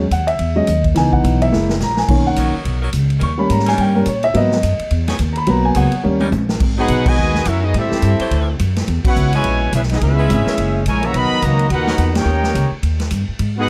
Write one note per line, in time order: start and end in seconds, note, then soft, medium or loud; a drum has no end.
0.00 0.10 E2 medium
0.11 0.39 D#2 medium
0.11 0.28 F#5 medium
0.11 kick soft
0.11 hi-hat pedal medium
0.11 ride medium
0.27 0.54 E5 medium
0.27 ride medium
0.39 0.67 E2 medium
0.39 kick soft
0.39 ride medium
0.56 0.66 F#3 soft
0.56 0.66 G#3 soft
0.56 0.66 C#4 medium
0.56 0.83 D#5 medium
0.67 0.95 D#2 loud
0.67 kick soft
0.67 hi-hat pedal medium
0.67 ride medium
0.84 kick medium
0.84 ride soft
0.94 1.23 C#2 medium
0.94 1.49 E3 medium
0.94 1.49 B3 soft
0.94 1.50 D#4 medium
0.94 1.13 G#5 medium
0.94 snare soft
0.94 ride medium
1.13 1.39 F#5 medium
1.13 kick medium
1.24 1.51 B1 loud
1.24 kick soft
1.24 hi-hat pedal medium
1.24 ride medium
1.42 1.68 E5 medium
1.42 ride medium
1.52 1.80 F#1 medium
1.52 1.73 G#3 medium
1.52 1.73 A#3 soft
1.52 1.73 E4 medium
1.52 snare soft
1.69 snare medium
1.80 2.08 A#1 medium
1.80 1.98 A#5 medium
1.80 snare medium
1.80 hi-hat pedal medium
1.97 2.24 G#5 medium
1.97 snare medium
2.08 2.36 B1 medium
2.08 2.52 D#3 medium
2.08 2.52 A#3 soft
2.08 2.52 C#4 medium
2.08 kick medium
2.08 crash medium
2.27 2.53 F#5 medium
2.36 2.53 A#1 medium
2.36 2.79 F#3 loud
2.36 2.79 B3 medium
2.36 2.79 D#4 medium
2.36 2.79 A#4 loud
2.36 kick soft
2.36 hi-hat pedal medium
2.36 ride medium
2.55 muted upright bass stroke soft
2.65 2.93 B1 medium
2.65 kick soft
2.65 ride medium
2.81 2.89 F#3 loud
2.81 2.89 B3 medium
2.81 2.89 D#4 medium
2.81 2.89 A#4 loud
2.93 3.21 C#2 medium
2.93 kick soft
2.93 hi-hat pedal medium
2.93 ride medium
3.10 ride medium
3.19 3.49 D#2 medium
3.19 3.32 G3 medium
3.19 3.31 C#4 medium
3.19 3.32 D#4 medium
3.19 3.32 A#4 medium
3.19 kick soft
3.19 ride medium
3.23 3.39 C#6 medium
3.38 3.93 G3 medium
3.38 3.93 A#3 soft
3.38 3.94 C#4 medium
3.38 3.50 B5 medium
3.50 3.77 G#2 loud
3.50 3.67 A#5 medium
3.50 kick soft
3.50 hi-hat pedal medium
3.50 ride medium
3.59 snare soft
3.66 4.04 G3 loud
3.66 4.04 C#4 loud
3.66 4.04 D#4 loud
3.66 4.04 A#4 loud
3.66 3.79 G#5 loud
3.66 snare medium
3.66 ride medium
3.78 4.06 G2 medium
3.78 3.96 G5 medium
3.78 kick soft
3.78 ride medium
3.95 4.05 G3 medium
3.95 4.05 A#3 soft
3.95 4.06 C#4 medium
3.95 4.07 A#4 medium
4.06 4.34 A#2 loud
4.06 4.24 C#5 medium
4.06 kick soft
4.06 hi-hat pedal medium
4.06 ride medium
4.23 4.35 E5 loud
4.23 ride medium
4.34 4.62 G#2 medium
4.34 4.55 F#3 medium
4.34 4.55 A#3 soft
4.34 4.55 B3 medium
4.34 4.88 D#5 medium
4.34 kick soft
4.34 ride medium
4.52 snare medium
4.63 4.79 F#2 loud
4.63 kick soft
4.63 hi-hat pedal medium
4.63 ride medium
4.79 muted upright bass stroke soft
4.79 ride medium
4.91 5.19 E2 loud
4.91 kick soft
4.91 ride medium
5.08 5.16 F#3 loud
5.08 5.16 B3 loud
5.08 5.15 D#4 loud
5.08 5.16 G#4 loud
5.08 snare medium
5.08 ride medium
5.19 5.46 D#2 loud
5.19 kick soft
5.19 hi-hat pedal medium
5.19 ride medium
5.33 5.35 A#5 medium
5.33 ride medium
5.37 5.48 B5 medium
5.47 5.75 B1 medium
5.47 5.90 F#3 medium
5.47 5.90 A#3 soft
5.47 5.91 B3 medium
5.47 5.65 A#5 medium
5.47 kick soft
5.47 ride medium
5.65 5.76 G#5 medium
5.75 5.92 C#2 medium
5.75 6.04 F#3 loud
5.75 6.04 D#4 medium
5.75 6.04 G#4 loud
5.75 6.03 F#5 medium
5.75 kick soft
5.75 hi-hat pedal medium
5.75 ride medium
5.92 ride medium
6.03 6.32 D#2 medium
6.03 6.24 G3 medium
6.03 6.24 A#3 soft
6.03 6.25 C#4 medium
6.19 6.28 G3 loud
6.19 6.28 C#4 loud
6.19 6.28 D#4 loud
6.19 6.28 A#4 loud
6.19 high tom medium
6.32 6.60 A#1 medium
6.32 hi-hat pedal medium
6.32 high tom medium
6.49 snare medium
6.60 6.88 G#1 medium
6.60 kick medium
6.60 crash medium
6.77 7.15 F#3 loud
6.77 7.15 B3 medium
6.77 7.04 B3 loud
6.77 7.15 D#4 medium
6.77 7.04 D#4 medium
6.77 7.05 D#4 medium
6.77 7.04 F#4 loud
6.77 7.15 G#4 loud
6.77 7.05 G#4 loud
6.77 7.05 B4 loud
6.77 7.05 F#5 loud
6.88 7.16 B1 loud
6.88 kick soft
6.88 hi-hat pedal medium
6.88 ride medium
7.06 7.46 B2 loud
7.06 7.46 D#3 medium
7.06 7.46 G#3 loud
7.06 7.45 F#4 loud
7.06 7.46 B4 loud
7.06 7.46 D#5 loud
7.06 7.46 G#5 loud
7.06 kick loud
7.06 crash medium
7.17 7.45 D#2 medium
7.35 snare medium
7.45 7.73 F#2 loud
7.45 7.63 C#4 medium
7.45 7.63 E4 medium
7.45 7.63 F#4 medium
7.45 7.63 A#4 medium
7.45 7.63 E5 medium
7.45 kick soft
7.45 hi-hat pedal medium
7.45 ride medium
7.64 7.75 F#3 medium
7.64 7.75 B3 medium
7.64 7.75 D#4 medium
7.64 7.75 F#4 medium
7.64 7.75 G#4 medium
7.64 7.75 D#5 medium
7.74 7.90 A2 medium
7.74 8.28 G3 medium
7.74 8.56 C4 medium
7.74 8.57 C4 medium
7.74 8.56 E4 medium
7.74 8.28 G4 medium
7.74 8.56 A4 medium
7.74 8.56 E5 loud
7.74 kick soft
7.74 ride medium
7.92 muted upright bass stroke soft
7.92 snare medium
8.02 8.18 G2 medium
8.02 kick soft
8.02 hi-hat pedal medium
8.02 ride medium
8.19 8.57 F#3 loud
8.19 8.57 D4 loud
8.19 8.57 E4 medium
8.19 8.57 C5 loud
8.19 muted upright bass stroke soft
8.19 ride medium
8.31 8.58 D2 loud
8.31 kick soft
8.31 ride medium
8.59 8.87 F#2 loud
8.59 kick soft
8.59 hi-hat pedal medium
8.59 ride medium
8.76 snare medium
8.76 ride medium
8.88 9.03 E2 medium
8.88 kick soft
8.88 ride medium
9.04 9.31 B3 medium
9.04 9.31 C#4 medium
9.04 9.32 E4 medium
9.04 9.31 F#4 medium
9.04 9.32 B4 medium
9.04 9.32 C#5 medium
9.04 9.32 F#5 loud
9.04 muted upright bass stroke soft
9.04 kick loud
9.04 crash medium
9.15 9.43 C#2 loud
9.15 hi-hat pedal medium
9.32 9.70 B2 medium
9.32 9.70 C#3 medium
9.32 9.70 G#3 loud
9.32 9.70 G#3 medium
9.32 9.70 C#4 medium
9.32 9.70 E4 medium
9.32 9.70 B4 loud
9.32 9.71 B4 medium
9.32 9.71 C#5 medium
9.32 9.71 G#5 loud
9.32 ride medium
9.44 9.71 A#1 medium
9.44 kick soft
9.44 ride medium
9.73 10.00 B1 loud
9.73 9.81 B3 medium
9.73 9.81 C#4 medium
9.73 9.81 E4 medium
9.73 9.81 G#4 medium
9.73 9.81 B4 medium
9.73 9.81 E5 medium
9.73 kick soft
9.73 hi-hat pedal medium
9.73 ride medium
9.83 snare soft
9.89 9.97 B3 medium
9.89 9.95 D#4 medium
9.89 9.97 E4 medium
9.89 9.97 G#4 medium
9.89 9.97 D#5 medium
9.89 snare medium
9.89 ride medium
10.00 10.28 C#2 medium
10.00 10.81 G#3 medium
10.00 10.53 B3 medium
10.00 10.83 C#4 medium
10.00 10.81 E4 medium
10.00 10.83 G#4 medium
10.00 10.54 B4 medium
10.00 10.83 E5 loud
10.00 kick soft
10.00 ride medium
10.17 10.44 G#3 loud
10.17 10.44 C#4 medium
10.17 10.44 E4 medium
10.17 10.44 B4 loud
10.30 10.45 G#1 loud
10.30 kick soft
10.30 hi-hat pedal medium
10.30 ride medium
10.45 10.54 F#3 medium
10.45 10.54 C#4 medium
10.45 10.53 E4 medium
10.45 10.53 A#4 loud
10.45 muted upright bass stroke soft
10.45 snare medium
10.58 10.85 F#1 medium
10.58 kick soft
10.58 ride medium
10.85 11.13 A#1 loud
10.85 11.02 G#3 medium
10.85 11.03 E4 medium
10.85 11.03 A#4 medium
10.85 11.03 C#5 medium
10.85 11.03 G#5 loud
10.85 kick soft
10.85 hi-hat pedal medium
10.85 ride medium
11.03 11.15 C#3 medium
11.03 11.14 E3 medium
11.03 11.15 A#3 medium
11.03 11.15 F#4 medium
11.03 11.15 C#5 medium
11.03 11.15 E5 medium
11.03 11.15 A#5 loud
11.03 ride medium
11.14 11.30 B1 medium
11.14 11.40 D#3 loud
11.14 11.40 F#3 loud
11.14 11.42 B3 loud
11.14 11.43 F#4 loud
11.14 11.44 A#4 loud
11.14 11.43 D#5 loud
11.14 11.43 B5 loud
11.14 kick soft
11.14 ride medium
11.31 muted upright bass stroke soft
11.41 11.70 C#2 loud
11.41 11.70 D#3 medium
11.41 11.70 F#3 loud
11.41 11.70 A#3 medium
11.41 11.71 F#4 medium
11.41 11.71 B4 medium
11.41 11.71 D#5 medium
11.41 11.71 A#5 loud
11.41 kick soft
11.41 hi-hat pedal medium
11.41 ride medium
11.59 ride medium
11.70 11.98 D#2 medium
11.70 12.12 A#2 medium
11.70 12.12 D#4 medium
11.70 12.13 D#4 medium
11.70 12.12 F#4 medium
11.70 12.14 A#4 loud
11.70 12.13 B4 medium
11.70 12.13 F#5 loud
11.70 kick soft
11.70 ride medium
11.87 11.95 F#3 loud
11.87 11.95 B3 medium
11.87 11.95 D#4 medium
11.87 11.95 A#4 loud
11.87 snare medium
11.98 12.25 E2 loud
11.98 kick soft
11.98 hi-hat pedal medium
11.98 ride medium
12.14 12.72 A#3 medium
12.14 12.72 C#4 medium
12.14 12.72 G4 medium
12.14 12.73 A#4 medium
12.14 snare loud
12.14 ride medium
12.19 12.74 D#4 medium
12.19 12.74 C#5 medium
12.19 12.74 G5 loud
12.25 12.54 D#2 medium
12.44 snare medium
12.55 12.70 C#2 loud
12.55 kick soft
12.55 hi-hat pedal medium
12.55 ride medium
12.71 muted upright bass stroke soft
12.83 13.11 D#2 medium
12.83 kick soft
12.83 ride medium
13.00 snare medium
13.00 ride medium
13.11 13.27 G2 loud
13.11 kick soft
13.11 hi-hat pedal medium
13.11 ride medium
13.28 muted upright bass stroke soft
13.39 13.67 G#2 loud
13.39 kick soft
13.39 ride medium
13.56 13.69 B3 loud
13.56 13.69 D#4 loud
13.56 13.69 F#4 loud
13.56 13.69 G#4 loud
13.56 13.69 F#5 loud
13.60 13.69 D#4 loud
13.60 13.69 B4 loud